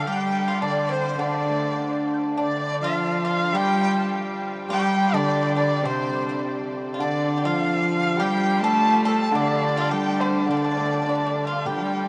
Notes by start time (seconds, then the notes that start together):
0.03 G3 G5
0.07 G4
0.47 F4 F5
0.61 D3 D4 D5
0.89 C4 C5
1.18 D3 D4 D5
1.26 F5
1.35 D5
1.49 A3
1.79 D4
2.13 F6 G6
2.20 C6 D6
2.26 A5
2.31 F5 G5
2.37 D3 D4 D5
2.80 F3 F4 F5
3.25 F4 F5
3.53 G3 G4 G5
3.97 A5
4.69 G3 G4 G5
4.74 G5
5.06 F5
5.13 D3 D4 D5
5.56 D4 D5
5.79 C3 D5
5.84 C3 C4 C5
6.27 C4 C5
6.94 F4
6.99 D3 D4 D5
7.37 G4
7.43 F3 F4 F5
7.91 F5
8.17 G3 G4 G5
8.22 G5
8.56 C6
8.61 A3 A4 A5
8.67 A5
9.04 A4 A5
9.32 D3 D4 D5
9.36 D5
9.41 F5
9.48 D5
9.56 F5
9.64 D5
9.77 F4 F5
9.90 G3 G4 G5
10.19 C4 C5
10.25 F6 G6
10.30 D6
10.35 A5 C6
10.43 D3 F5 G5
10.48 D3 D4 D5
10.57 D4
10.64 D4
10.71 D4
10.77 A3 D4
10.85 D4
10.94 D4
11.02 D4
11.06 D3 D4 D5
11.15 D4
11.26 D4
11.47 F4 F5
11.65 G3 G4 G5